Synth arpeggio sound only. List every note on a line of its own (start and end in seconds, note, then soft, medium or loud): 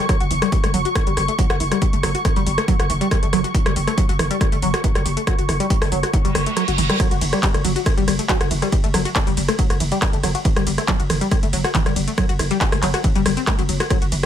0.09 0.16 F#3 loud
0.20 0.25 F#4 medium
0.31 0.34 E3 medium
0.42 0.49 G3 loud
0.52 0.57 G3 medium
0.64 0.68 A3 medium
0.74 0.81 F#3 loud
0.85 0.90 F#4 medium
0.96 0.98 E3 medium
1.07 1.13 G3 loud
1.17 1.22 G3 medium
1.28 1.33 A3 medium
1.39 1.46 F#3 loud
1.50 1.54 F#4 medium
1.60 1.63 E3 medium
1.72 1.78 G3 loud
1.82 1.87 G3 medium
1.93 1.97 A3 medium
2.03 2.11 F#3 loud
2.15 2.19 F#4 medium
2.25 2.28 E3 medium
2.36 2.43 G3 loud
2.46 2.51 G3 medium
2.58 2.62 A3 medium
2.68 2.75 F#3 loud
2.79 2.84 F#4 medium
2.90 2.93 E3 medium
3.01 3.08 G3 medium
3.11 3.16 G3 medium
3.23 3.27 A3 medium
3.33 3.40 F#3 loud
3.44 3.49 F#4 medium
3.54 3.57 E3 medium
3.66 3.72 G3 loud
3.76 3.81 G3 medium
3.87 3.92 A3 medium
3.98 4.05 F#3 loud
4.09 4.13 F#4 medium
4.19 4.22 E3 medium
4.31 4.37 G3 loud
4.41 4.46 G3 medium
4.52 4.56 A3 medium
4.62 4.70 F#3 loud
4.74 4.78 F#4 medium
4.84 4.87 E3 medium
4.95 5.02 G3 loud
5.06 5.10 G3 medium
5.17 5.21 A3 medium
5.27 5.34 F#3 loud
5.38 5.43 F#4 medium
5.49 5.52 E3 medium
5.60 5.66 G3 loud
5.70 5.75 G3 medium
5.82 5.86 A3 medium
5.92 5.99 F#3 loud
6.03 6.08 F#4 medium
6.13 6.16 E3 medium
6.25 6.31 G3 loud
6.35 6.40 G3 medium
6.46 6.51 A3 medium
6.57 6.64 F#3 loud
6.68 6.72 F#4 medium
6.78 6.81 E3 medium
6.90 6.96 G3 loud
7.00 7.07 F#3 loud
7.11 7.15 F#4 medium
7.21 7.24 E3 medium
7.33 7.39 G3 loud
7.43 7.48 G3 medium
7.54 7.59 A3 medium
7.64 7.72 F#3 loud
7.76 7.80 F#4 medium
7.86 7.89 E3 medium
7.97 8.04 G3 loud
8.08 8.12 G3 medium
8.19 8.23 A3 medium
8.29 8.36 F#3 loud
8.41 8.45 F#4 medium
8.51 8.54 E3 medium
8.62 8.69 G3 loud
8.72 8.77 G3 medium
8.84 8.88 A3 medium
8.94 9.01 F#3 loud
9.05 9.10 F#4 medium
9.16 9.18 E3 medium
9.27 9.33 G3 loud
9.37 9.42 G3 medium
9.49 9.53 A3 medium
9.59 9.66 F#3 loud
9.70 9.74 F#4 medium
9.80 9.83 E3 medium
9.92 9.98 G3 loud
10.13 10.18 A3 medium
10.24 10.31 F#3 loud
10.35 10.39 F#4 medium
10.45 10.48 E3 medium
10.56 10.63 G3 loud
10.67 10.71 G3 medium
10.78 10.82 A3 medium
10.88 10.95 F#3 loud
11.00 11.04 F#4 medium
11.10 11.13 E3 medium
11.21 11.28 G3 loud
11.31 11.36 G3 medium
11.43 11.47 A3 medium
11.53 11.60 F#3 loud
11.64 11.69 F#4 medium
11.75 11.77 E3 medium
11.86 11.92 G3 loud
11.96 12.01 G3 medium
12.08 12.12 A3 medium
12.18 12.25 F#3 loud
12.29 12.33 F#4 medium
12.39 12.42 E3 medium
12.51 12.57 G3 loud
12.61 12.66 G3 medium
12.72 12.77 A3 medium
12.83 12.90 F#3 loud
12.94 12.98 F#4 medium
13.04 13.07 E3 medium
13.15 13.22 G3 loud
13.26 13.30 G3 medium
13.37 13.41 C4 medium
13.47 13.52 A3 medium
13.59 13.63 F#3 loud
13.69 13.76 F#3 medium
13.80 13.85 F#4 medium
13.90 13.98 F#3 loud
14.02 14.06 F#4 medium
14.12 14.15 E3 medium